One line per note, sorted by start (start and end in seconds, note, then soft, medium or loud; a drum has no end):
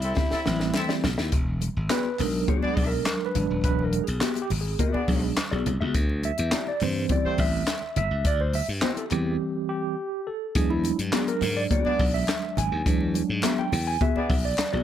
0.00 0.12 C2 medium
0.00 0.12 C4 medium
0.00 1.04 E4 medium
0.00 0.12 E4 medium
0.00 0.12 A4 medium
0.00 0.12 E5 medium
0.00 closed hi-hat medium
0.17 0.34 C4 medium
0.17 0.34 E4 medium
0.17 0.35 G4 medium
0.17 0.35 E5 medium
0.17 kick loud
0.17 snare medium
0.17 muted conga soft
0.17 low conga medium
0.31 0.40 C4 medium
0.31 0.40 E4 medium
0.31 0.40 A4 medium
0.31 0.40 E5 medium
0.31 muted slap bass stroke medium
0.31 snare medium
0.31 muted conga soft
0.46 0.70 A1 loud
0.46 1.04 E3 medium
0.46 0.52 F#3 medium
0.46 1.05 A3 medium
0.46 1.05 C4 medium
0.46 snare medium
0.46 high conga medium
0.52 1.08 G3 medium
0.60 snare medium
0.74 0.93 C4 loud
0.74 0.93 E4 medium
0.74 0.93 A4 medium
0.74 0.93 E5 loud
0.74 snare medium
0.74 clap loud
0.74 muted conga soft
0.74 high conga medium
0.89 1.07 C4 medium
0.89 1.07 E4 medium
0.89 1.07 G4 medium
0.89 1.06 D5 medium
0.89 snare medium
1.04 1.16 B1 medium
1.04 snare loud
1.04 high conga medium
1.04 low conga medium
1.18 1.30 D#2 medium
1.18 1.32 C4 medium
1.18 1.32 E4 medium
1.18 1.32 G4 medium
1.18 1.31 E5 medium
1.18 snare medium
1.32 1.68 E1 loud
1.32 kick loud
1.32 closed hi-hat medium
1.61 closed hi-hat medium
1.61 high conga medium
1.76 1.88 G#1 medium
1.90 2.07 B3 medium
1.90 2.07 F#4 medium
1.90 2.08 G#4 medium
1.90 2.21 B4 loud
1.90 2.08 D5 medium
1.90 snare loud
1.90 clap loud
1.90 clap medium
1.90 closed hi-hat loud
1.90 muted conga soft
1.90 high conga medium
2.05 muted conga soft
2.19 2.43 B1 loud
2.19 3.34 F#3 medium
2.19 3.34 G#3 soft
2.19 3.35 D4 medium
2.19 2.50 A#4 medium
2.19 clap medium
2.19 open hi-hat medium
2.19 high conga medium
2.19 low conga medium
2.48 2.68 B3 medium
2.48 2.68 F#4 medium
2.48 2.88 G#4 medium
2.48 2.69 G#4 medium
2.48 2.69 D5 loud
2.48 kick loud
2.48 closed hi-hat medium
2.48 low conga medium
2.62 2.87 B3 loud
2.62 2.87 D4 loud
2.62 2.87 G#4 medium
2.62 2.87 D5 loud
2.62 muted slap bass stroke soft
2.62 muted conga soft
2.77 3.01 B1 medium
2.77 kick medium
2.77 open hi-hat medium
2.77 high conga medium
2.87 3.27 A#4 loud
3.06 snare loud
3.06 clap medium
3.06 closed hi-hat medium
3.06 high conga medium
3.21 muted conga soft
3.26 3.63 B4 loud
3.35 3.47 G#1 medium
3.35 3.61 F#3 soft
3.35 3.61 G#3 soft
3.35 3.61 D4 medium
3.35 closed hi-hat medium
3.35 high conga medium
3.35 low conga medium
3.50 3.62 D#1 medium
3.64 3.99 E1 medium
3.64 4.02 F#3 medium
3.64 4.02 G#3 medium
3.64 4.03 D4 medium
3.64 3.84 B4 loud
3.64 kick loud
3.64 closed hi-hat medium
3.79 muted conga soft
3.84 4.03 A#4 medium
3.93 closed hi-hat medium
3.93 high conga medium
4.04 4.23 G#4 medium
4.04 closed hi-hat medium
4.08 4.19 B1 medium
4.21 4.39 B3 medium
4.21 4.39 F#4 medium
4.21 4.41 G4 medium
4.21 4.39 G#4 medium
4.21 4.39 E5 medium
4.21 snare loud
4.21 clap loud
4.21 closed hi-hat medium
4.21 muted conga soft
4.21 high conga medium
4.36 closed hi-hat soft
4.36 muted conga soft
4.42 4.50 G4 medium
4.50 4.74 G#1 medium
4.50 open hi-hat medium
4.50 high conga medium
4.50 low conga medium
4.61 4.80 G#4 medium
4.79 4.99 B3 medium
4.79 5.00 F#4 medium
4.79 5.00 G#4 medium
4.79 4.93 A#4 medium
4.79 5.00 E5 loud
4.79 kick loud
4.79 closed hi-hat medium
4.79 muted conga soft
4.79 low conga medium
4.92 5.30 B3 loud
4.92 5.30 D4 loud
4.92 5.30 G#4 loud
4.92 5.30 D5 loud
4.92 muted slap bass stroke medium
4.92 muted conga soft
5.08 5.32 B1 loud
5.08 5.34 F#3 medium
5.08 5.34 G#3 soft
5.08 5.35 D4 medium
5.08 5.35 G#4 medium
5.08 kick medium
5.08 open hi-hat medium
5.08 high conga medium
5.37 snare loud
5.37 clap medium
5.37 closed hi-hat medium
5.37 high conga medium
5.51 5.64 B1 medium
5.51 5.70 B3 medium
5.51 5.69 F#4 medium
5.51 5.69 G#4 medium
5.51 5.69 D5 medium
5.51 muted conga soft
5.66 5.78 C2 medium
5.66 closed hi-hat medium
5.66 high conga medium
5.66 low conga medium
5.81 5.93 C#2 medium
5.81 5.95 B3 medium
5.81 5.94 F#4 medium
5.81 5.94 G#4 medium
5.81 5.94 E5 medium
5.95 6.30 D2 loud
5.95 kick loud
5.95 closed hi-hat medium
5.95 muted conga soft
6.09 muted conga soft
6.23 6.69 E5 loud
6.23 closed hi-hat medium
6.23 high conga medium
6.38 6.50 E2 medium
6.38 closed hi-hat medium
6.52 6.70 C4 medium
6.52 6.70 E4 medium
6.52 6.70 G4 medium
6.52 6.71 D5 loud
6.52 snare loud
6.52 clap loud
6.52 clap medium
6.52 closed hi-hat loud
6.52 muted conga soft
6.52 high conga medium
6.67 6.81 D5 loud
6.67 muted conga soft
6.81 7.05 G2 medium
6.81 7.64 E3 medium
6.81 7.64 G3 medium
6.81 7.64 C4 medium
6.81 7.12 C5 medium
6.81 clap medium
6.81 open hi-hat medium
6.81 high conga medium
6.81 low conga medium
7.09 7.27 C4 medium
7.09 7.28 E4 loud
7.09 7.28 G4 loud
7.09 7.41 D5 medium
7.09 7.28 D5 loud
7.09 kick loud
7.09 closed hi-hat medium
7.09 low conga medium
7.24 7.43 A3 loud
7.24 7.43 C4 loud
7.24 7.43 G4 loud
7.24 7.43 C5 loud
7.24 muted slap bass stroke soft
7.38 7.62 A1 loud
7.38 7.96 E5 medium
7.38 kick medium
7.38 open hi-hat medium
7.38 high conga medium
7.67 snare loud
7.67 clap medium
7.67 closed hi-hat medium
7.67 high conga medium
7.83 muted conga soft
7.96 8.08 G1 medium
7.96 8.27 E5 loud
7.96 closed hi-hat medium
7.96 high conga medium
7.96 low conga medium
8.11 8.25 C#2 medium
8.25 8.61 D2 medium
8.25 8.41 D5 loud
8.25 kick loud
8.25 closed hi-hat loud
8.40 8.55 C5 loud
8.40 muted conga soft
8.53 8.68 E5 loud
8.53 open hi-hat medium
8.53 high conga medium
8.69 8.80 G2 medium
8.82 9.03 C4 medium
8.82 9.03 E4 medium
8.82 9.04 G4 medium
8.82 8.90 C5 medium
8.82 9.04 E5 medium
8.82 snare loud
8.82 clap loud
8.82 clap medium
8.82 closed hi-hat medium
8.82 muted conga soft
8.82 high conga medium
8.97 9.04 A4 loud
8.97 closed hi-hat soft
8.97 muted conga soft
9.11 9.36 E2 medium
9.11 9.94 E3 medium
9.11 9.94 G3 soft
9.11 9.94 C4 medium
9.11 9.68 G4 loud
9.11 clap medium
9.11 closed hi-hat medium
9.11 high conga medium
9.11 low conga medium
9.69 10.29 G4 loud
10.27 10.57 A4 loud
10.55 10.91 E2 loud
10.55 12.82 F#3 medium
10.55 12.82 G#3 medium
10.55 12.82 D4 medium
10.55 10.71 G#4 loud
10.55 kick loud
10.55 closed hi-hat medium
10.70 10.97 E4 medium
10.70 muted conga soft
10.84 closed hi-hat medium
10.84 high conga medium
10.99 11.11 G2 medium
10.99 closed hi-hat medium
11.13 11.30 B3 medium
11.13 11.31 F#4 medium
11.13 11.28 G#4 loud
11.13 11.31 G#4 medium
11.13 11.31 D5 medium
11.13 snare loud
11.13 clap medium
11.13 closed hi-hat loud
11.13 high conga medium
11.27 11.58 A#4 loud
11.27 closed hi-hat soft
11.27 muted conga soft
11.41 11.66 G#2 medium
11.41 clap medium
11.41 open hi-hat medium
11.41 high conga medium
11.41 low conga medium
11.57 11.63 D5 loud
11.71 11.91 B3 medium
11.71 11.91 F#4 loud
11.71 11.91 G#4 loud
11.71 12.15 D5 medium
11.71 11.92 D5 loud
11.71 kick loud
11.71 closed hi-hat medium
11.71 muted conga soft
11.71 low conga medium
11.84 12.03 B3 loud
11.84 12.03 D4 loud
11.84 12.03 G#4 loud
11.84 12.03 D5 loud
11.84 muted slap bass stroke medium
11.84 muted conga soft
11.99 12.23 B1 medium
11.99 kick medium
11.99 open hi-hat medium
11.99 high conga medium
12.14 12.59 E5 loud
12.28 snare loud
12.28 clap medium
12.28 closed hi-hat medium
12.28 high conga medium
12.42 muted conga soft
12.57 12.69 G#1 medium
12.57 12.84 G#5 loud
12.57 closed hi-hat medium
12.57 high conga medium
12.57 low conga medium
12.72 12.84 D#2 medium
12.86 13.22 E2 loud
12.86 13.68 F#3 medium
12.86 13.69 G#3 medium
12.86 13.69 D4 medium
12.86 kick loud
12.86 closed hi-hat medium
13.00 muted conga soft
13.14 closed hi-hat medium
13.14 high conga medium
13.29 13.41 G#2 medium
13.43 13.61 B3 loud
13.43 13.61 F#4 medium
13.43 13.61 G#4 medium
13.43 13.59 E5 medium
13.43 13.62 E5 loud
13.43 snare loud
13.43 clap medium
13.43 clap loud
13.43 closed hi-hat loud
13.43 muted conga soft
13.43 high conga medium
13.58 13.88 G5 loud
13.58 muted conga soft
13.72 13.96 E2 medium
13.72 open hi-hat medium
13.72 high conga medium
13.72 low conga medium
13.87 14.02 G#5 loud
14.01 14.18 B3 medium
14.01 14.19 F#4 medium
14.01 14.19 G#4 loud
14.01 14.46 E5 medium
14.01 14.19 E5 medium
14.01 kick loud
14.01 closed hi-hat medium
14.01 low conga medium
14.16 14.34 B3 loud
14.16 14.34 D4 medium
14.16 14.34 G#4 loud
14.16 14.34 D5 loud
14.16 muted slap bass stroke medium
14.16 muted conga soft
14.30 14.53 B1 loud
14.30 kick medium
14.30 open hi-hat medium
14.30 high conga medium
14.45 14.83 D5 medium
14.58 snare loud
14.58 clap medium
14.58 closed hi-hat medium
14.58 muted conga soft
14.58 high conga medium
14.73 14.83 B1 medium
14.73 14.83 B3 medium
14.73 14.83 F#4 medium
14.73 14.83 G#4 medium
14.73 14.83 D5 medium